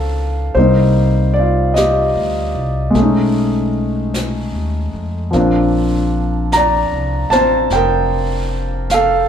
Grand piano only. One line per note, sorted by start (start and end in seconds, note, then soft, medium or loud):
0.00 0.55 E3 soft
0.00 0.55 F3 soft
0.00 0.56 C4 soft
0.00 0.57 D4 soft
0.00 0.54 A4 medium
0.00 0.55 C5 medium
0.00 0.59 F5 medium
0.00 0.57 A5 medium
0.55 2.95 G3 soft
0.55 2.95 A#3 soft
0.55 2.95 C4 soft
0.55 2.95 D#4 soft
0.55 1.30 C5 medium
1.34 1.72 D5 medium
1.39 1.75 F4 soft
1.74 2.92 G4 soft
1.74 3.68 D#5 medium
2.90 5.30 G#3 soft
2.95 5.32 A3 soft
2.95 5.34 C#4 soft
3.02 5.36 D#4 soft
5.31 9.29 F3 soft
5.31 9.29 A#3 soft
5.31 7.32 C4 soft
5.36 9.29 D4 soft
6.53 7.28 D5 medium
6.53 7.26 A#5 medium
7.30 9.29 C4 soft
7.30 7.69 C5 medium
7.30 7.71 A5 medium
7.73 8.87 A#4 medium
7.73 8.86 G5 medium
8.91 9.29 A4 medium
8.91 9.29 F5 medium